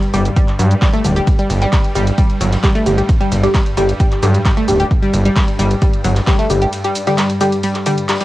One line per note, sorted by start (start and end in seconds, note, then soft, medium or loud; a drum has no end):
0.00 8.24 G2 medium
0.00 8.24 G3 medium
0.00 closed hi-hat soft
0.00 shaker soft
0.14 0.29 G1 medium
0.14 0.29 D3 loud
0.14 0.23 G3 loud
0.14 0.29 G3 medium
0.14 0.29 G4 loud
0.14 closed hi-hat medium
0.14 open hi-hat loud
0.14 shaker medium
0.25 closed hi-hat soft
0.25 closed hi-hat medium
0.25 shaker soft
0.36 0.46 G3 medium
0.36 kick loud
0.36 closed hi-hat loud
0.36 closed hi-hat medium
0.36 shaker soft
0.48 clap soft
0.48 closed hi-hat medium
0.48 shaker soft
0.59 0.75 G2 medium
0.59 0.63 F#3 medium
0.59 closed hi-hat medium
0.59 open hi-hat loud
0.59 shaker medium
0.71 closed hi-hat medium
0.71 shaker soft
0.82 0.88 G3 loud
0.82 kick loud
0.82 snare loud
0.82 clap loud
0.82 closed hi-hat medium
0.82 shaker soft
0.93 1.00 A3 loud
0.93 closed hi-hat medium
0.93 shaker soft
1.04 1.20 D1 medium
1.04 1.14 D3 medium
1.04 1.14 G3 medium
1.04 1.14 G4 loud
1.04 closed hi-hat medium
1.04 open hi-hat loud
1.04 shaker medium
1.16 1.22 G4 medium
1.16 closed hi-hat soft
1.16 closed hi-hat medium
1.16 shaker soft
1.27 kick loud
1.27 closed hi-hat medium
1.27 ride medium
1.27 shaker soft
1.39 1.48 G3 loud
1.39 closed hi-hat medium
1.39 closed hi-hat soft
1.39 ride medium
1.39 shaker soft
1.50 1.66 G1 loud
1.50 closed hi-hat medium
1.50 open hi-hat loud
1.50 ride medium
1.50 shaker medium
1.62 1.68 G3 loud
1.62 closed hi-hat medium
1.62 ride medium
1.62 shaker soft
1.72 1.79 G3 loud
1.72 kick loud
1.72 snare loud
1.72 clap loud
1.72 closed hi-hat medium
1.72 open hi-hat medium
1.72 ride medium
1.72 shaker soft
1.84 closed hi-hat medium
1.84 ride medium
1.84 shaker soft
1.95 2.11 G1 medium
1.95 2.05 G3 loud
1.95 closed hi-hat medium
1.95 open hi-hat medium
1.95 ride medium
1.95 shaker medium
2.07 closed hi-hat soft
2.07 closed hi-hat medium
2.07 ride medium
2.07 shaker soft
2.18 2.28 G3 medium
2.18 kick loud
2.18 closed hi-hat medium
2.18 ride medium
2.18 shaker soft
2.30 closed hi-hat soft
2.30 ride medium
2.30 shaker soft
2.40 2.56 G1 loud
2.40 2.45 F#3 medium
2.40 closed hi-hat medium
2.40 open hi-hat loud
2.40 ride medium
2.40 shaker medium
2.52 snare medium
2.52 clap soft
2.52 closed hi-hat medium
2.52 ride medium
2.52 shaker soft
2.63 2.73 D3 medium
2.63 2.70 G3 loud
2.63 2.73 G3 medium
2.63 2.73 G4 medium
2.63 kick loud
2.63 snare loud
2.63 clap loud
2.63 closed hi-hat medium
2.63 ride medium
2.63 shaker soft
2.75 2.81 A3 loud
2.75 closed hi-hat soft
2.75 ride medium
2.75 shaker soft
2.86 3.02 G1 medium
2.86 2.96 D3 medium
2.86 2.96 G3 medium
2.86 2.96 G4 medium
2.86 closed hi-hat medium
2.86 open hi-hat loud
2.86 ride medium
2.86 shaker medium
2.98 3.04 G4 medium
2.98 closed hi-hat soft
2.98 ride medium
2.98 shaker soft
3.09 kick loud
3.09 closed hi-hat medium
3.09 ride medium
3.09 shaker soft
3.20 3.30 G3 loud
3.20 closed hi-hat soft
3.20 ride medium
3.20 shaker soft
3.32 3.47 G1 medium
3.32 closed hi-hat medium
3.32 open hi-hat loud
3.32 ride medium
3.32 shaker medium
3.43 3.53 D3 medium
3.43 3.53 G3 medium
3.43 3.50 G3 loud
3.43 3.53 G4 loud
3.43 snare soft
3.43 closed hi-hat soft
3.43 ride medium
3.43 shaker soft
3.54 3.61 G3 loud
3.54 kick loud
3.54 snare loud
3.54 clap loud
3.54 closed hi-hat medium
3.54 ride medium
3.54 shaker soft
3.66 closed hi-hat soft
3.66 ride medium
3.66 shaker soft
3.77 3.93 G1 medium
3.77 3.92 D3 loud
3.77 3.92 G3 medium
3.77 3.87 G3 loud
3.77 3.92 G4 loud
3.77 closed hi-hat medium
3.77 open hi-hat medium
3.77 ride medium
3.77 shaker medium
3.89 closed hi-hat medium
3.89 closed hi-hat soft
3.89 ride medium
3.89 shaker soft
4.00 4.10 G3 medium
4.00 kick loud
4.00 closed hi-hat medium
4.00 ride medium
4.00 shaker soft
4.12 clap soft
4.12 closed hi-hat soft
4.12 ride medium
4.12 shaker soft
4.22 4.38 G2 medium
4.22 4.32 D3 loud
4.22 4.27 F#3 medium
4.22 4.32 G3 medium
4.22 4.32 G4 loud
4.22 closed hi-hat medium
4.22 open hi-hat loud
4.22 ride medium
4.22 shaker medium
4.34 closed hi-hat medium
4.34 ride medium
4.34 shaker soft
4.45 4.52 G3 loud
4.45 kick loud
4.45 snare loud
4.45 clap loud
4.45 closed hi-hat medium
4.45 ride medium
4.45 shaker soft
4.57 4.63 A3 loud
4.57 closed hi-hat medium
4.57 ride medium
4.57 shaker soft
4.68 4.84 D1 medium
4.68 4.83 D3 medium
4.68 4.83 G3 medium
4.68 4.83 G4 loud
4.68 closed hi-hat medium
4.68 open hi-hat medium
4.68 ride medium
4.68 shaker medium
4.79 4.86 G4 medium
4.79 closed hi-hat soft
4.79 ride medium
4.79 shaker soft
4.91 kick loud
4.91 closed hi-hat medium
4.91 ride medium
4.91 shaker soft
5.02 5.12 G3 loud
5.02 closed hi-hat soft
5.02 closed hi-hat medium
5.02 ride medium
5.02 shaker soft
5.14 5.29 G1 loud
5.14 closed hi-hat medium
5.14 open hi-hat loud
5.14 ride medium
5.14 shaker medium
5.25 5.31 G3 loud
5.25 closed hi-hat medium
5.25 ride medium
5.25 shaker soft
5.36 5.43 G3 loud
5.36 kick loud
5.36 snare loud
5.36 clap loud
5.36 closed hi-hat loud
5.36 open hi-hat medium
5.36 ride medium
5.36 shaker soft
5.48 closed hi-hat medium
5.48 ride medium
5.48 shaker soft
5.59 5.75 G1 medium
5.59 5.69 G3 loud
5.59 closed hi-hat medium
5.59 open hi-hat medium
5.59 ride medium
5.59 shaker medium
5.70 closed hi-hat soft
5.70 closed hi-hat medium
5.70 ride medium
5.70 shaker soft
5.82 5.91 G3 medium
5.82 kick loud
5.82 closed hi-hat medium
5.82 ride medium
5.82 shaker soft
5.93 closed hi-hat medium
5.93 ride medium
5.93 shaker soft
6.04 6.20 G1 loud
6.04 6.08 F#3 medium
6.04 closed hi-hat medium
6.04 open hi-hat loud
6.04 ride medium
6.04 shaker medium
6.16 snare medium
6.16 clap soft
6.16 closed hi-hat medium
6.16 ride medium
6.16 shaker soft
6.27 6.37 D3 medium
6.27 6.34 G3 loud
6.27 6.37 G3 medium
6.27 6.37 G4 medium
6.27 kick loud
6.27 snare loud
6.27 clap loud
6.27 closed hi-hat medium
6.27 ride medium
6.27 shaker soft
6.39 6.45 A3 loud
6.39 closed hi-hat medium
6.39 closed hi-hat soft
6.39 ride medium
6.39 shaker soft
6.50 6.66 G1 medium
6.50 6.60 D3 medium
6.50 6.60 G3 medium
6.50 6.60 G4 medium
6.50 closed hi-hat medium
6.50 open hi-hat medium
6.50 ride medium
6.50 shaker medium
6.62 6.68 G4 medium
6.62 closed hi-hat soft
6.62 ride medium
6.62 shaker soft
6.73 closed hi-hat loud
6.73 closed hi-hat medium
6.73 ride medium
6.73 shaker soft
6.84 6.93 G3 loud
6.84 closed hi-hat medium
6.84 closed hi-hat soft
6.84 ride medium
6.84 shaker soft
6.94 closed hi-hat medium
6.94 open hi-hat loud
6.94 ride medium
6.94 shaker medium
7.07 7.16 D3 loud
7.07 7.13 G3 loud
7.07 7.16 G3 medium
7.07 7.16 G4 loud
7.07 snare medium
7.07 closed hi-hat medium
7.07 ride medium
7.07 shaker soft
7.17 7.25 G3 loud
7.17 snare loud
7.17 clap loud
7.17 closed hi-hat medium
7.17 closed hi-hat loud
7.17 ride medium
7.17 shaker soft
7.30 closed hi-hat medium
7.30 closed hi-hat soft
7.30 ride medium
7.30 shaker soft
7.41 7.56 D3 loud
7.41 7.50 G3 loud
7.41 7.56 G3 medium
7.41 7.56 G4 loud
7.41 closed hi-hat medium
7.41 open hi-hat medium
7.41 ride medium
7.41 shaker medium
7.53 closed hi-hat medium
7.53 closed hi-hat soft
7.53 ride medium
7.53 shaker soft
7.64 7.73 G3 medium
7.64 closed hi-hat loud
7.64 closed hi-hat medium
7.64 ride medium
7.64 shaker soft
7.75 clap soft
7.75 closed hi-hat medium
7.75 ride medium
7.75 shaker soft
7.86 7.96 D3 medium
7.86 7.93 G3 medium
7.86 7.96 G3 medium
7.86 7.96 G4 loud
7.86 closed hi-hat medium
7.86 open hi-hat loud
7.86 ride medium
7.86 shaker medium
7.98 closed hi-hat medium
7.98 ride medium
7.98 shaker soft
8.09 8.15 G3 medium
8.09 snare medium
8.09 clap loud
8.09 closed hi-hat loud
8.09 open hi-hat medium
8.09 ride medium
8.09 shaker soft
8.15 snare medium
8.15 open hi-hat medium
8.20 8.24 G3 loud
8.20 snare loud
8.20 closed hi-hat medium
8.20 open hi-hat medium
8.20 ride medium
8.20 shaker soft